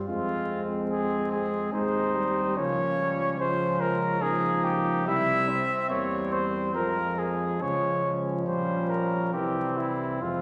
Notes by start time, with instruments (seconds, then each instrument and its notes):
0.08 tuba F2, trombone G#3, french horn C4, flugelhorn C4, trumpet F4
0.91 trumpet G#4
1.32 trumpet G#4
1.73 tuba D#2, trombone G#3, french horn C4, flugelhorn D#4, trumpet C5
2.15 trombone G3
2.56 tuba C#2, trombone F3, french horn A#3, flugelhorn C#4, trumpet C#5
2.99 french horn G3
3.39 trombone F3, french horn G#3, flugelhorn C#4, trumpet C5
3.81 trumpet A#4
4.21 trombone F3, french horn A#3, flugelhorn D#4, trumpet G#4
4.64 trumpet G4
5.06 tuba C2, trombone G3, french horn C4, flugelhorn E4, trumpet E5
5.49 flugelhorn C4
5.90 tuba E2, trombone G3, french horn A#3, trumpet C#5
6.33 trumpet C5
6.74 tuba F2, trombone F3, french horn G#3, trumpet A#4
7.19 trumpet G#4
7.62 tuba C#2, trombone F3, flugelhorn C#4, trumpet C#5
8.05 trombone F3
8.46 tuba A#1, french horn G3, flugelhorn C#4, trumpet C5
8.89 trumpet A#4
9.33 tuba C2, trombone E3, french horn G3, flugelhorn C4, trumpet G4
9.78 trumpet E4
10.21 tuba F2, trombone F3, french horn G#3, flugelhorn C4, trumpet F4